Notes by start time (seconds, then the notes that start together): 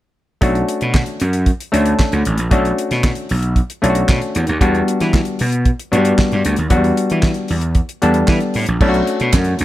0.41 B1 A3 C#4 D4 F#4, kick, closed hi-hat
0.55 closed hi-hat
0.69 closed hi-hat
0.81 B2, closed hi-hat
0.94 kick, snare, clap
1.06 closed hi-hat
1.20 F#2, closed hi-hat
1.33 closed hi-hat
1.46 kick, closed hi-hat
1.60 closed hi-hat
1.72 D2 A3 C#4 D4 A4, closed hi-hat
1.86 closed hi-hat
1.99 kick, snare, clap
2.12 D2, closed hi-hat
2.25 A1, closed hi-hat
2.38 A#1, closed hi-hat
2.51 B1 A3 C#4 D4 F#4, kick, closed hi-hat
2.65 closed hi-hat
2.78 closed hi-hat
2.91 B2, snare, closed hi-hat
3.04 kick, snare, clap
3.15 closed hi-hat
3.29 B1, open hi-hat
3.43 closed hi-hat
3.56 kick, closed hi-hat
3.70 closed hi-hat
3.82 B1 A3 C#4 D4 F4, closed hi-hat
3.90 F#4
3.95 closed hi-hat
4.09 B2, kick, snare, clap
4.22 closed hi-hat
4.35 E2, closed hi-hat
4.47 D#2, closed hi-hat
4.61 E2 G3 B3 D4 F#4, kick, closed hi-hat
4.75 closed hi-hat
4.88 closed hi-hat
5.00 E3, snare, closed hi-hat
5.13 kick, snare, clap
5.25 closed hi-hat
5.39 B2, open hi-hat
5.52 closed hi-hat
5.66 kick, closed hi-hat
5.80 closed hi-hat
5.92 G2 F#3 B3 D4 F#4, closed hi-hat
5.98 G3
6.05 closed hi-hat
6.18 kick, snare, clap
6.32 G2, closed hi-hat
6.45 D2, closed hi-hat
6.56 D#2, closed hi-hat
6.70 E2 F#3 B3 D4 F#4, kick, closed hi-hat
6.77 G3
6.84 closed hi-hat
6.97 closed hi-hat
7.10 E3, closed hi-hat
7.23 kick, snare, clap
7.34 closed hi-hat
7.48 E2, open hi-hat
7.61 closed hi-hat
7.75 kick, closed hi-hat
7.89 closed hi-hat
8.02 E2 G3 B3 D4 A4, closed hi-hat
8.14 closed hi-hat
8.28 E3, kick, snare, clap
8.40 closed hi-hat
8.54 A2, open hi-hat
8.66 A#1, closed hi-hat
8.81 B1 A3 C#4 D4 E4, kick, crash
8.89 F#4
8.94 closed hi-hat
9.07 closed hi-hat
9.20 B2, closed hi-hat
9.33 F#2, kick, snare, clap
9.44 closed hi-hat
9.59 D2, closed hi-hat